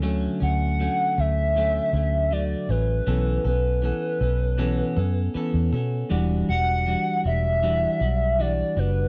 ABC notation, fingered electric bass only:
X:1
M:4/4
L:1/16
Q:1/4=79
K:Edor
V:1 name="Fingered electric bass" clef=bass
D,,2 D,,3 z D,,4 D,,4 A,,,2 | B,,,2 B,,,3 z B,,,4 F,,2 z E,, B,,2 | E,,,2 E,,,3 z E,,,4 B,,,4 F,,,2 |]